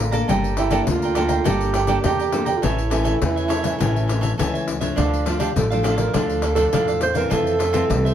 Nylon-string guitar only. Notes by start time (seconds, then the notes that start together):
Already playing: D3
0.13 A#3 D4 A4
0.29 G3
0.71 A#3 D4 A4
0.88 D3
1.16 A#3 D4 A4
1.46 G3 A#3 D4 A4
1.88 A#3 D4 A4
2.05 D3
2.33 A#3 D4 A4
2.63 A2 E3 A3 C#4
2.91 E3 A3 C#4
3.22 E3 A3 C#4
3.64 E3 A3 C#4
3.80 A2 E3 A3 C#4
4.39 E3 A3 C#4
4.81 F3 A3 D4
4.98 D3
5.26 F3 A3 D4
5.56 A2 F3 A3 D4
5.72 F3 A3 D4
6.15 D3 F3 A3 D4
6.57 F3 A3 D4
6.73 A2 F3 A3 D4
7.15 E3 A3 C4
7.32 F2
7.74 E3 A3 C4
7.90 C3